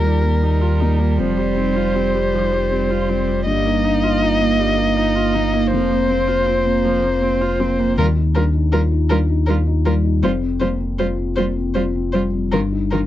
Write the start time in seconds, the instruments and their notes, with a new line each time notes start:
Already playing: felt piano D#2 D#4 F4 G4, sub bass D#2, cello G3, violin A#4
0.04 viola G3, felt piano D#4
0.23 viola A#3, felt piano F4
0.43 viola D#4, felt piano G4
0.61 viola F4, felt piano F4
0.81 felt piano A#3, viola D#4
1.00 viola A#3, felt piano F4
1.19 sub bass F1, felt piano F2, viola F3, violin C5
1.38 viola G3, felt piano F4
1.57 viola C4, felt piano D#4
1.76 felt piano F4, viola F4
1.95 viola C4, felt piano G4
2.14 viola G3, felt piano F4
2.34 viola F3, felt piano D#4
2.53 viola G3, felt piano F4
2.72 viola C4, felt piano G4
2.90 felt piano F4, viola F4
3.10 felt piano G3, viola C4
3.28 viola G3, felt piano F4
3.47 sub bass G1, felt piano G2, viola G3, cello A#3, violin D#5
3.66 viola A#3, felt piano D#4
3.84 felt piano D4, viola D#4
4.04 felt piano D#4, viola F4
4.23 viola D#4, felt piano F4
4.42 viola A#3, felt piano D#4
4.60 viola G3, felt piano D4
4.78 viola A#3, felt piano D#4
4.97 viola D#4, felt piano F4
5.16 felt piano D#4, viola F4
5.34 felt piano A#3, viola D#4
5.53 viola A#3, felt piano D#4
5.72 sub bass F1, felt piano F2, viola F3, violin C5
5.91 viola A#3, felt piano C4
6.09 felt piano A#3, viola C4
6.28 felt piano C4, viola F4
6.47 viola C4, felt piano F4
6.66 viola A#3, felt piano C4
6.84 viola F3, felt piano A#3
7.03 viola A#3, felt piano C4
7.22 viola C4, felt piano F4
7.41 felt piano C4, viola F4
7.60 felt piano A#3, viola C4
7.79 viola A#3, felt piano C4
7.98 sub bass D#2, felt piano D#2, cello G3, viola F4, violin A#4
8.17 felt piano D#4
8.35 cello G3, felt piano D4, viola F4, violin A#4
8.54 felt piano D#4
8.72 cello G3, felt piano F4, viola F4, violin A#4
8.92 felt piano D#4
9.10 cello G3, felt piano D4, viola F4, violin A#4
9.29 felt piano D#4
9.46 cello G3, viola F4, violin A#4
9.67 felt piano D#4
9.85 felt piano G3, cello G3, viola F4, violin A#4
10.04 felt piano D#4
10.23 sub bass F1, felt piano F2, cello G3, viola F4, violin C5
10.42 felt piano C4
10.60 cello G3, felt piano A#3, viola F4, violin C5
10.80 felt piano C4
10.99 cello G3, viola F4, felt piano F4, violin C5
11.18 felt piano C4
11.36 cello G3, felt piano A#3, viola F4, violin C5
11.56 felt piano C4
11.74 cello G3, viola F4, felt piano F4, violin C5
11.95 felt piano C4
12.12 cello G3, felt piano G3, viola F4, violin C5
12.34 felt piano C4
12.52 sub bass G1, felt piano G2, cello D#3, viola F4, violin A#4
12.72 felt piano D#4
12.91 cello D#3, felt piano D4, viola F4, violin A#4